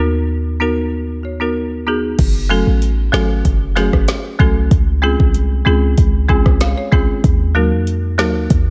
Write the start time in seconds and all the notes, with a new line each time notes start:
Already playing: D#2 B3 D#4
0.00 F#4 A#4
0.60 B3 D#4 F#4 A#4
1.23 F#4 C#5
1.40 B3 D#4 F#4 A#4
1.87 B3 D#4 F#4 G#4
2.19 F#1, kick, closed hi-hat, crash
2.49 F#3 A3 C#4 F#4 A4
2.67 A1
2.82 closed hi-hat
3.12 G#1 F#3 A3 C#4 F#4 A4, snare
3.45 F#1, kick, closed hi-hat
3.75 F#3 A3 C#4 F#4 G#4, snare
3.93 F#1, kick, cross-stick
4.08 snare, closed hi-hat
4.39 C2 F#3 A3 C#4 F#4 A4, kick
4.71 C#2, kick, closed hi-hat
5.02 G#3 C4 C#4 F4 G#4
5.20 C2, kick
5.34 closed hi-hat
5.65 C#2 G#3 C4 C#4 F4 G#4
5.98 C#2, kick, closed hi-hat
6.28 G#3 C4 C#4 F4 G#4 G#5, kick
6.46 C2, kick, cross-stick
6.60 F5, snare, closed hi-hat
6.78 C#5
6.91 C2 G#3 C4 C#4 F4 G#4, kick
7.24 D#2, kick, closed hi-hat
7.55 F#3 A#3 D#4 F#4 A#4
7.72 F2
7.87 closed hi-hat
8.18 D#2 F#3 A#3 D#4 F#4 A#4, snare
8.50 D#2, kick, closed hi-hat